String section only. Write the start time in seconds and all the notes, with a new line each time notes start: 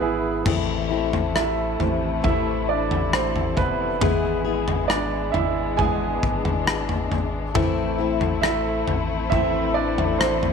Already playing: E3 E4 G#4 B4
0.45 C3 A3 E4
4.01 G#3 B3
5.79 D4
7.56 A3 C4 E4